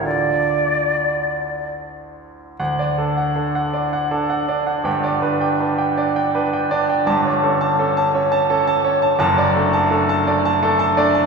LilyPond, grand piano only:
\new Staff \with { instrumentName = "Grand piano" } { \time 3/4 \key d \minor \tempo 4 = 81 << { r2. | \key d \major fis''16 d''16 a'16 fis''16 a'16 fis''16 d''16 fis''16 a'16 fis''16 d''16 fis''16 | g''16 d''16 b'16 g''16 b'16 g''16 d''16 g''16 b'16 g''16 d''16 g''16 | a''16 cis''16 a'16 a''16 a'16 a''16 cis''16 a''16 a'16 a''16 cis''16 a''16 |
a''16 d''16 a'16 a''16 a'16 a''16 d''16 a''16 a'16 a''16 d''16 a''16 | } \\ { <d, d' f' a'>2. | d,8 d'8 d'8 d'8 d'8 d'8 | <g,, g,>8 d'8 d'8 d'8 d'8 d'8 | <g,, g,>8 cis'8 cis'8 cis'8 cis'8 cis'8 |
<fis,, fis,>8 <a d'>8 <a d'>8 <a d'>8 <a d'>8 <a d'>8 | } >> }